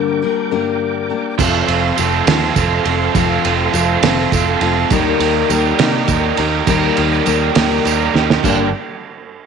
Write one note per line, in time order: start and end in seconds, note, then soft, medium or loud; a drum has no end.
0.00 0.22 G2 loud
0.00 0.22 D3 loud
0.00 0.21 G3 loud
0.00 0.21 A#3 loud
0.00 0.22 D4 loud
0.00 0.23 A#4 loud
0.00 1.35 A#4 medium
0.00 1.35 G5 medium
0.00 1.36 D6 medium
0.22 0.51 G3 medium
0.22 0.51 A#3 medium
0.22 0.50 D4 medium
0.22 0.50 A#4 medium
0.51 1.10 G2 medium
0.51 1.10 D3 medium
0.51 1.10 G3 medium
0.51 1.10 A#3 medium
0.51 1.09 D4 medium
0.51 1.08 A#4 medium
1.10 1.38 G3 medium
1.10 1.38 A#3 medium
1.10 1.39 D4 medium
1.10 1.39 A#4 medium
1.38 1.61 F1 medium
1.38 3.14 F3 loud
1.38 1.96 A3 loud
1.38 1.69 C4 loud
1.38 1.68 F4 loud
1.38 4.88 A4 medium
1.38 1.67 A4 loud
1.38 4.88 F5 medium
1.38 4.87 C6 medium
1.38 kick loud
1.38 crash loud
1.38 tambourine loud
1.67 1.90 F1 loud
1.67 1.96 C4 medium
1.67 1.97 F4 medium
1.67 1.98 A4 medium
1.67 ride medium
1.96 2.20 F1 loud
1.96 2.27 F3 medium
1.96 2.53 A3 medium
1.96 2.27 C4 medium
1.96 2.25 F4 medium
1.96 2.24 A4 medium
1.96 ride medium
1.96 tambourine loud
2.12 tambourine soft
2.25 2.49 D#2 loud
2.25 2.86 F3 medium
2.25 2.54 C4 medium
2.25 2.55 F4 medium
2.25 2.56 A4 medium
2.25 snare loud
2.25 ride loud
2.54 2.78 F1 medium
2.54 3.14 A3 medium
2.54 2.85 C4 medium
2.54 2.84 F4 medium
2.54 2.83 A4 medium
2.54 kick medium
2.54 ride medium
2.54 tambourine loud
2.84 3.07 F1 medium
2.84 3.14 C4 medium
2.84 3.15 F4 medium
2.84 3.16 A4 medium
2.84 ride medium
3.14 3.37 F1 loud
3.14 3.73 F3 loud
3.14 3.72 A3 loud
3.14 3.45 C4 loud
3.14 3.44 F4 loud
3.14 3.43 A4 loud
3.14 kick loud
3.14 ride loud
3.14 tambourine loud
3.44 3.67 F1 medium
3.44 3.73 C4 medium
3.44 3.74 F4 medium
3.44 3.75 A4 medium
3.44 ride medium
3.73 3.96 F1 medium
3.73 4.02 F3 medium
3.73 4.31 A3 medium
3.73 4.04 C4 medium
3.73 4.03 F4 medium
3.73 4.02 A4 medium
3.73 ride medium
3.73 tambourine loud
4.03 4.25 F1 loud
4.03 4.62 F3 medium
4.03 4.32 C4 medium
4.03 4.32 F4 medium
4.03 4.33 A4 medium
4.03 snare loud
4.03 ride loud
4.32 4.54 F1 medium
4.32 4.89 A3 medium
4.32 4.62 C4 medium
4.32 4.61 F4 medium
4.32 4.60 A4 medium
4.32 kick medium
4.32 ride medium
4.32 tambourine loud
4.61 4.83 F1 medium
4.61 4.90 C4 medium
4.61 4.90 F4 medium
4.61 4.89 A4 medium
4.61 ride medium
4.90 5.13 D#2 loud
4.90 6.67 D#3 loud
4.90 5.21 G3 loud
4.90 5.49 A#3 loud
4.90 5.50 D#4 loud
4.90 5.20 G4 loud
4.90 8.41 A#4 medium
4.90 5.19 A#4 loud
4.90 8.41 G5 medium
4.90 8.40 D#6 medium
4.90 kick loud
4.90 ride loud
4.90 tambourine medium
5.20 5.42 D#2 loud
5.20 5.50 G3 medium
5.20 5.51 G4 medium
5.20 5.51 A#4 medium
5.20 ride medium
5.50 5.72 D#2 loud
5.50 5.81 G3 medium
5.50 6.08 A#3 medium
5.50 5.79 D#4 medium
5.50 5.79 G4 medium
5.50 5.78 A#4 medium
5.50 ride medium
5.50 tambourine loud
5.65 tambourine soft
5.78 6.01 C3 loud
5.78 6.39 D#3 medium
5.78 6.08 G3 medium
5.78 6.40 A#3 medium
5.78 6.38 D#4 medium
5.78 6.09 G4 medium
5.78 6.10 A#4 medium
5.78 snare loud
5.78 ride loud
6.08 6.30 D#2 medium
6.08 6.40 G3 medium
6.08 6.67 A#3 medium
6.08 6.38 G4 loud
6.08 6.38 A#4 medium
6.08 kick medium
6.08 ride medium
6.08 tambourine loud
6.37 6.60 D#2 medium
6.37 6.67 G3 medium
6.37 6.67 A#3 medium
6.37 6.67 D#4 medium
6.37 6.68 G4 medium
6.37 6.68 A#4 medium
6.37 ride medium
6.67 6.89 D#2 loud
6.67 7.26 D#3 medium
6.67 6.98 G3 loud
6.67 7.24 A#3 loud
6.67 7.26 D#4 loud
6.67 6.97 G4 loud
6.67 6.95 A#4 loud
6.67 kick loud
6.67 ride loud
6.67 tambourine loud
6.97 7.20 D#2 loud
6.97 7.25 G3 medium
6.97 7.26 G4 medium
6.97 7.26 A#4 medium
6.97 ride medium
7.12 tambourine soft
7.25 7.49 D#2 medium
7.25 7.57 G3 medium
7.25 7.83 A#3 medium
7.25 7.55 D#4 medium
7.25 7.55 G4 medium
7.25 7.54 A#4 medium
7.25 ride medium
7.25 tambourine loud
7.55 7.78 D#2 medium
7.55 8.15 D#3 medium
7.55 7.84 G3 medium
7.55 8.14 A#3 medium
7.55 8.13 D#4 medium
7.55 7.85 G4 medium
7.55 7.85 A#4 medium
7.55 snare loud
7.55 ride loud
7.55 tambourine soft
7.71 tambourine soft
7.84 8.08 D#2 medium
7.84 8.15 G3 medium
7.84 8.42 A#3 medium
7.84 8.14 G4 medium
7.84 8.13 A#4 loud
7.84 ride medium
7.84 tambourine loud
8.02 tambourine soft
8.14 8.37 D#2 medium
8.14 8.43 G3 medium
8.14 8.43 A#3 medium
8.14 8.44 D#4 medium
8.14 8.43 G4 medium
8.14 8.42 A#4 medium
8.14 snare medium
8.30 snare loud
8.44 8.71 G1 medium
8.44 8.67 G2 loud
8.44 8.68 D3 loud
8.44 8.68 G3 loud
8.44 8.68 A#3 loud
8.44 8.72 D4 medium
8.44 8.68 D4 loud
8.44 8.68 G4 loud
8.44 8.72 A#4 medium
8.44 8.72 G5 medium
8.44 kick loud
8.44 crash medium
8.44 tambourine medium